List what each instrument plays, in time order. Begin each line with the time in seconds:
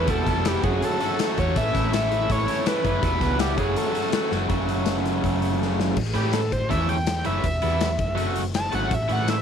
Already playing: analog synth lead B4
0.07 fingered electric bass E1, overdriven electric guitar E2 B2 E3 G3 B3 E4, analog synth lead A4, kick, closed hi-hat
0.26 fingered electric bass F1, overdriven electric guitar E3 G3 B3 E4, kick, snare, closed hi-hat
0.45 overdriven electric guitar E2 B2 E3 G3 B3 E4, analog synth lead G4, snare, closed hi-hat, tambourine
0.64 fingered electric bass F#1, overdriven electric guitar F#2 C#3 F#3 A3 C#4 F#4, analog synth lead G#4, kick, closed hi-hat
0.82 analog synth lead A4, closed hi-hat
1.00 overdriven electric guitar F#3 A3 C#4 F#4, closed hi-hat
1.19 overdriven electric guitar F#3 A3 C#4 F#4, snare, closed hi-hat, tambourine
1.37 fingered electric bass E2, overdriven electric guitar F#3 A3 C#4 F#4, analog synth lead C#5, kick, closed hi-hat
1.55 fingered electric bass A1, overdriven electric guitar A2 E3 A3 C#4 E4, analog synth lead E5, kick, closed hi-hat
1.73 fingered electric bass A1, overdriven electric guitar A3 C#4 E4, kick, snare, closed hi-hat
1.93 overdriven electric guitar A2 E3 A3 C#4 E4, analog synth lead E5, snare, closed hi-hat, tambourine
2.12 closed hi-hat
2.30 fingered electric bass A1, analog synth lead C#5, kick, closed hi-hat
2.47 overdriven electric guitar A3 C#4 E4, closed hi-hat
2.65 overdriven electric guitar E3 A3 C#4 E4, analog synth lead B4, snare, closed hi-hat, tambourine
2.84 fingered electric bass F#1, overdriven electric guitar A3 C#4 E4, kick, closed hi-hat
3.02 fingered electric bass E1, overdriven electric guitar E2 B2 E3 G3 B3 E4, analog synth lead B4, kick, closed hi-hat
3.20 fingered electric bass C#2, overdriven electric guitar E3 G3 B3 E4, kick, snare, closed hi-hat
3.38 overdriven electric guitar E2 B2 E3 G3 B3 E4, analog synth lead G4, snare, closed hi-hat, tambourine
3.57 fingered electric bass F#1, overdriven electric guitar F#2 C#3 F#3 A3 C#4 F#4, analog synth lead G#4, kick, closed hi-hat
3.76 analog synth lead A4, closed hi-hat
3.93 overdriven electric guitar F#3 A3 C#4 F#4, closed hi-hat
4.12 overdriven electric guitar F#3 A3 C#4 F#4, snare, closed hi-hat, tambourine
4.31 fingered electric bass F#1, overdriven electric guitar F#3 A3 C#4 F#4, snare
4.49 fingered electric bass F#1, overdriven electric guitar F#2 C#3 F#3 A3 C#4 F#4, kick, closed hi-hat
4.69 closed hi-hat
4.86 snare, closed hi-hat, tambourine
4.97 snare
5.06 snare, closed hi-hat
5.24 fingered electric bass F#1, kick, closed hi-hat
5.42 closed hi-hat
5.62 snare
5.80 snare
5.96 fingered electric bass A1, kick, crash
6.14 fingered electric bass A2, overdriven electric guitar E3 A3 C#4 E4, analog synth lead G4, closed hi-hat
6.33 analog synth lead A4, snare, closed hi-hat, tambourine
6.52 analog synth lead C5, kick, closed hi-hat
6.70 fingered electric bass E2, overdriven electric guitar E3 A3 C#4 E4, analog synth lead E5, kick, closed hi-hat
6.89 analog synth lead G5, closed hi-hat
7.07 snare, closed hi-hat, tambourine
7.25 fingered electric bass F#1, overdriven electric guitar E3 A3 C#4 E4, analog synth lead E5, closed hi-hat
7.44 fingered electric bass E1, kick, closed hi-hat
7.62 fingered electric bass E2, overdriven electric guitar E3 G3 B3 E4, closed hi-hat
7.81 snare, closed hi-hat, tambourine
7.99 fingered electric bass F#1, kick, closed hi-hat
8.15 overdriven electric guitar F#3 A3 C#4 F#4, closed hi-hat
8.36 closed hi-hat
8.54 analog synth lead A5, snare, closed hi-hat, tambourine
8.72 fingered electric bass G#1, overdriven electric guitar F#3 A3 C#4 F#4, analog synth lead F#5, closed hi-hat
8.91 fingered electric bass A1, analog synth lead E5, kick, closed hi-hat
9.08 fingered electric bass A2, overdriven electric guitar E3 A3 C#4 E4, closed hi-hat
9.13 analog synth lead F#5
9.28 analog synth lead E5, snare, closed hi-hat, tambourine